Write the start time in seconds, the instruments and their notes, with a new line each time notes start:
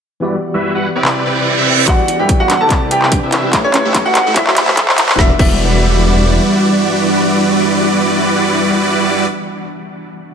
0.20 tine electric piano E3 B3 F#4 G4 D5, supersaw synth G3 E4 F#4 B4 D5, ambient pad E4 D5
0.54 supersaw synth G3 E4 F#4 B4 E5
0.75 supersaw synth G3 E4 F#4 B4 F#5
0.95 supersaw synth C4 E4 G4 B4 D5
1.03 tine electric piano C3 C4 E4 B4, clap, reverse cymbal
1.07 tine electric piano D5
1.26 supersaw synth C4 E4 G4 B4 D5
1.57 supersaw synth C4 E4 G4 B4 E5
1.86 detuned saw bass E1, tine electric piano E3 B3 F#4 G4 D5, supersaw synth G3 E4 F#4 B4 D5, synth arpeggio sound D4, grand piano F#4 F#5, ambient pad D6, kick, clap, closed hi-hat, riser
2.08 synth arpeggio sound E4, closed hi-hat
2.19 detuned saw bass E1, supersaw synth G3 E4 F#4 B4 E5, synth arpeggio sound F#4, grand piano G4 G5
2.29 kick, closed hi-hat
2.40 detuned saw bass E1, supersaw synth G3 E4 F#4 B4 F#5, grand piano F#4 F#5, synth arpeggio sound G4
2.50 synth arpeggio sound D4, clap, closed hi-hat
2.61 detuned saw bass C2, supersaw synth C4 E4 G4 B4 D5, grand piano A4 A5
2.68 tine electric piano C3 C4 E4 B4, synth arpeggio sound E4, ambient pad B4, kick, clap, closed hi-hat
2.72 tine electric piano D5
2.82 synth arpeggio sound G4
2.91 detuned saw bass C2, supersaw synth C4 E4 G4 B4 D5, grand piano G4 G5, closed hi-hat
3.02 synth arpeggio sound B4, clap
3.12 synth arpeggio sound D4, kick, closed hi-hat
3.23 detuned saw bass C2, supersaw synth C4 E4 G4 B4 E5
3.32 synth arpeggio sound E4, clap, closed hi-hat
3.44 synth arpeggio sound G4
3.51 detuned saw bass A1, tine electric piano A3 E4 G4 B4, supersaw synth A3 E4 G4 B4 C#5, kick, clap, closed hi-hat
3.55 tine electric piano C#5
3.64 grand piano C#4 C#5, synth arpeggio sound A4
3.74 synth arpeggio sound C#4, clap, closed hi-hat
3.85 detuned saw bass A1, supersaw synth A3 E4 G4 B4 E5
3.95 synth arpeggio sound E4, kick, clap, closed hi-hat
4.06 detuned saw bass A1, supersaw synth A3 E4 G4 B4 F#5, grand piano F#4 F#5, synth arpeggio sound G4
4.15 clap, closed hi-hat
4.26 detuned saw bass F#1, supersaw synth A3 E4 F#4 C5 E5, synth arpeggio sound A4
4.34 tine electric piano F#3 F#4 A4 C5, synth arpeggio sound E4, grand piano E4 E5, kick, clap, closed hi-hat
4.38 tine electric piano E5
4.47 clap
4.57 detuned saw bass F#1, supersaw synth A3 E4 F#4 C5 E5, synth arpeggio sound F#4, clap, closed hi-hat
4.68 synth arpeggio sound A4, clap
4.77 kick, clap, closed hi-hat
4.88 detuned saw bass F#1, supersaw synth A3 E4 F#4 C5 F#5, synth arpeggio sound C5, clap
4.98 synth arpeggio sound E4, clap, closed hi-hat
5.09 clap
5.16 detuned saw bass E1, tine electric piano E3 B3 F#4, supersaw synth G3 E4 F#4 B4 D5, ambient pad G3 D4 F#5, synth arpeggio sound D4, grand piano E5, kick, snare
5.20 tine electric piano G3 D5
5.36 detuned saw bass E1, tine electric piano E3 B3 F#4, supersaw synth G3 E4 F#4 B4 D5, synth arpeggio sound D4, grand piano E5, kick, crash
5.41 tine electric piano G3 D5